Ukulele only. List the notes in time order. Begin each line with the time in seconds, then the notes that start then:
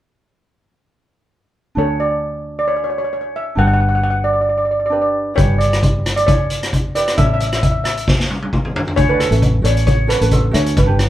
1.75 D4 F#4 A4
3.55 D4 G4 B4
4.90 D4 G4 B4
5.34 E4 G4 B4
6.95 E4 G4 B4
7.15 E4 A4 C#5
9.08 F#4 A4 D5
9.30 F#4 A4 E5
9.62 F#4 A4 D5
10.07 F#4 A4 B4
10.20 F#4 A4 B4
10.51 F#4 A4 E5
10.86 D4 G4 B4